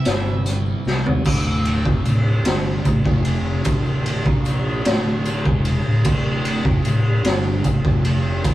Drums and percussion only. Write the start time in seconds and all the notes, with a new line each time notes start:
0.05 snare, closed hi-hat
0.27 tambourine
0.46 closed hi-hat, tambourine
0.66 tambourine
0.85 snare, tambourine
1.06 floor tom
1.25 kick, crash, tambourine
1.65 ride
1.86 kick
2.05 ride, tambourine
2.45 snare, ride
2.85 kick, ride, tambourine
3.06 kick
3.25 ride
3.64 kick, ride, tambourine
3.86 tambourine
4.06 ride
4.26 kick
4.45 ride, tambourine
4.85 snare, ride
5.25 ride, tambourine
5.46 kick
5.65 ride
6.04 kick, ride, tambourine
6.45 ride
6.65 kick
6.85 ride, tambourine
7.24 snare, ride
7.64 kick, ride, tambourine
7.85 kick
8.05 ride
8.44 kick, ride, tambourine